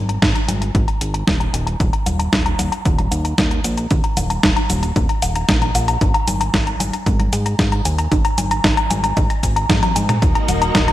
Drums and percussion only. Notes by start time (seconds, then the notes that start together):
0.09 closed hi-hat
0.22 kick, snare, closed hi-hat, high conga
0.35 closed hi-hat
0.49 closed hi-hat, high conga
0.62 closed hi-hat
0.75 kick, closed hi-hat
0.88 closed hi-hat
1.01 closed hi-hat
1.14 closed hi-hat
1.27 kick, snare, closed hi-hat
1.41 closed hi-hat
1.54 closed hi-hat
1.67 closed hi-hat
1.80 kick, closed hi-hat, cabasa
1.93 closed hi-hat
2.06 closed hi-hat, high conga, cabasa
2.20 closed hi-hat, cabasa
2.33 kick, snare, closed hi-hat, high conga, cabasa
2.46 closed hi-hat
2.59 closed hi-hat, high conga, cabasa
2.72 closed hi-hat, cabasa
2.85 kick, closed hi-hat, cabasa
2.99 closed hi-hat, high conga
3.12 closed hi-hat, cabasa
3.25 closed hi-hat, cabasa
3.38 kick, snare, closed hi-hat, cabasa
3.51 closed hi-hat
3.64 closed hi-hat, cabasa
3.78 closed hi-hat, cabasa
3.91 kick, closed hi-hat, cabasa
4.04 closed hi-hat
4.17 closed hi-hat, high conga, cabasa
4.30 closed hi-hat, cabasa
4.43 kick, snare, closed hi-hat, high conga, cabasa
4.57 closed hi-hat
4.70 closed hi-hat, high conga, cabasa
4.83 closed hi-hat, cabasa
4.96 kick, closed hi-hat, cabasa
5.09 closed hi-hat
5.22 closed hi-hat, cabasa
5.36 closed hi-hat, cabasa
5.49 kick, snare, closed hi-hat, cabasa
5.62 closed hi-hat
5.75 closed hi-hat, cabasa
5.88 closed hi-hat, cabasa
6.01 kick, closed hi-hat, cabasa
6.14 closed hi-hat
6.28 closed hi-hat, high conga, cabasa
6.41 closed hi-hat, cabasa
6.54 kick, snare, closed hi-hat, high conga, cabasa
6.67 closed hi-hat
6.80 closed hi-hat, high conga, cabasa
6.93 closed hi-hat, cabasa
7.06 kick, closed hi-hat, cabasa
7.20 closed hi-hat, high conga
7.33 closed hi-hat, cabasa
7.46 closed hi-hat, cabasa
7.59 kick, snare, closed hi-hat, cabasa
7.72 closed hi-hat
7.85 closed hi-hat, cabasa
7.99 closed hi-hat, cabasa
8.12 kick, closed hi-hat, cabasa
8.25 closed hi-hat, cabasa
8.38 closed hi-hat, high conga, cabasa
8.51 closed hi-hat, cabasa
8.64 kick, snare, closed hi-hat, high conga, cabasa
8.77 closed hi-hat, cabasa
8.91 closed hi-hat, high conga, cabasa
9.04 closed hi-hat, cabasa
9.17 kick, closed hi-hat, cabasa
9.30 closed hi-hat, cabasa
9.43 kick, closed hi-hat, cabasa
9.57 closed hi-hat, cabasa
9.70 kick, snare, closed hi-hat, high tom, cabasa
9.83 closed hi-hat, high tom, high conga
9.96 closed hi-hat, cabasa
10.09 closed hi-hat, mid tom, cabasa
10.22 kick, closed hi-hat, cabasa
10.35 closed hi-hat
10.48 closed hi-hat, high conga, cabasa
10.62 closed hi-hat, cabasa
10.75 kick, snare, closed hi-hat, high conga, cabasa
10.88 closed hi-hat